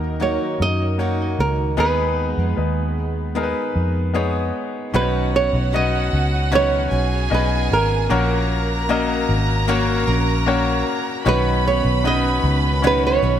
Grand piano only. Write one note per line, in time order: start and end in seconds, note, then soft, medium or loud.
0.00 1.78 D#3 medium
0.00 0.20 A#3 loud
0.00 0.20 D#4 medium
0.00 0.21 F#4 medium
0.00 1.80 A#4 loud
0.20 0.95 A#3 medium
0.20 0.95 D#4 medium
0.20 0.96 F#4 medium
0.20 0.96 C#5 medium
0.98 1.74 A#3 medium
0.98 1.74 D#4 medium
0.98 1.74 F#4 medium
0.98 1.74 C#5 medium
1.77 2.93 D#3 medium
1.77 2.53 B3 medium
1.77 2.53 D#4 medium
1.77 2.53 G#4 medium
1.77 1.85 A4 medium
1.85 2.56 B4 loud
2.56 3.32 B3 medium
2.56 3.32 D#4 medium
2.56 3.32 G#4 medium
2.56 3.33 B4 medium
3.35 4.11 B3 medium
3.35 4.11 D#4 medium
3.35 4.11 G#4 medium
3.35 3.43 A#4 medium
3.43 4.15 B4 medium
4.14 4.89 B3 medium
4.14 4.90 D#4 medium
4.14 4.90 G#4 medium
4.14 4.90 C#5 medium
4.94 6.09 B2 medium
4.94 5.69 C#4 medium
4.94 5.69 D#4 medium
4.94 5.69 F#4 medium
4.94 5.69 B4 medium
4.94 5.01 C5 medium
5.02 5.73 C#5 medium
5.73 6.48 C#4 medium
5.73 6.48 D#4 medium
5.73 6.48 F#4 medium
5.73 6.49 B4 medium
5.73 6.49 D#5 medium
6.51 7.27 C#4 medium
6.51 7.27 D#4 medium
6.51 7.27 F#4 medium
6.51 7.27 B4 medium
6.51 7.28 C#5 medium
7.30 8.06 B3 medium
7.30 8.05 C#4 medium
7.30 8.06 D#4 medium
7.30 8.06 F#4 medium
7.30 8.06 D#5 medium
8.10 9.25 A#2 medium
8.10 8.85 A#3 medium
8.10 8.85 C#4 medium
8.10 8.85 F#4 medium
8.10 8.85 A#4 medium
8.10 8.85 C#5 medium
8.89 9.64 A#3 medium
8.89 9.64 C#4 medium
8.89 9.64 F#4 medium
8.89 9.65 A#4 medium
8.89 9.65 D#5 medium
9.68 10.43 A#3 medium
9.68 10.43 C#4 medium
9.68 10.43 F#4 medium
9.68 10.43 A#4 medium
9.68 10.44 C#5 loud
10.46 11.22 A#3 medium
10.46 11.22 C#4 medium
10.46 11.22 F#4 medium
10.46 11.22 A#4 medium
10.46 11.22 C#5 loud
11.25 12.40 B2 medium
11.25 12.00 C#4 medium
11.25 12.01 D#4 medium
11.25 12.01 F#4 medium
11.25 12.01 B4 medium
11.25 12.01 C#5 loud
12.03 12.79 C#4 medium
12.03 12.79 D#4 medium
12.03 12.80 F#4 medium
12.03 12.80 B4 medium
12.03 12.80 D#5 medium
12.82 13.40 C#4 medium
12.82 13.40 D#4 medium
12.82 13.40 F#4 medium
12.82 13.40 B4 medium
12.82 13.40 C#5 medium